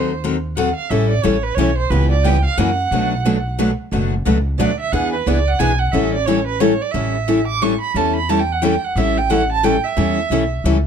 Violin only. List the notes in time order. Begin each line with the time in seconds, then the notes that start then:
Already playing: C5
0.56 F#5
0.75 F5
0.90 E5
1.10 D5
1.24 C#5
1.43 B4
1.55 C#5
1.78 C5
1.90 B4
2.11 D5
2.24 G5
2.45 F5
2.58 F#5
4.59 D5
4.80 E5
4.93 F#5
5.13 B4
5.27 D5
5.48 F#5
5.59 G#5
5.79 F#5
5.92 E5
6.14 D5
6.26 C#5
6.47 B4
6.60 C#5
6.81 D5
6.92 E5
7.47 D6
7.62 C#6
7.81 B5
7.97 A5
8.16 B5
8.29 A5
8.39 G5
8.52 F#5
8.62 G5
8.84 F#5
8.98 E5
9.18 G5
9.31 F#5
9.52 A5
9.65 G5
9.84 E5